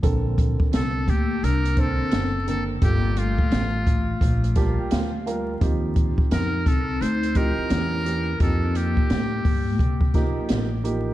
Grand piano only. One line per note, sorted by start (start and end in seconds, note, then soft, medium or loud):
0.03 1.00 D3 medium
0.03 1.00 A#3 medium
0.03 1.01 C4 medium
0.03 1.01 A4 medium
1.77 2.28 D3 medium
1.77 2.28 A#3 medium
1.77 2.28 C4 medium
1.77 2.29 C5 medium
2.47 2.73 D3 medium
2.47 2.74 A#3 medium
2.47 2.74 C4 medium
2.47 2.74 A#4 medium
2.81 3.80 A#2 medium
2.81 3.79 G3 medium
2.81 3.80 F4 medium
2.81 3.80 A4 medium
4.56 5.07 G3 medium
4.56 5.07 A#3 medium
4.56 5.07 F4 medium
4.56 5.07 G4 medium
4.56 4.77 A5 medium
4.78 4.91 G5 medium
4.92 5.24 F5 medium
5.26 5.52 G3 medium
5.26 5.53 A#3 medium
5.26 5.53 F4 medium
5.26 5.53 A#4 medium
5.26 5.59 F5 medium
5.61 6.58 F3 medium
5.61 6.58 C4 medium
5.61 6.59 D#4 medium
5.61 6.59 G4 medium
7.35 7.70 F3 medium
7.35 7.71 C4 medium
7.35 7.69 G4 medium
7.35 7.71 D#5 medium
7.70 8.00 E3 medium
7.70 8.00 A#3 medium
7.70 8.00 C#4 medium
7.70 8.00 G4 medium
8.04 8.31 E3 medium
8.04 8.31 A#3 medium
8.04 8.32 C#4 medium
8.04 8.32 G4 medium
8.40 9.37 F3 medium
8.40 9.37 A#3 medium
8.40 9.38 D#4 medium
8.40 9.38 G4 medium
10.14 10.65 F3 medium
10.14 10.65 A#3 medium
10.14 10.65 D#4 medium
10.14 10.66 G4 medium
10.84 11.10 F3 medium
10.84 11.11 A#3 medium
10.84 11.11 D#4 medium
10.84 11.11 G4 medium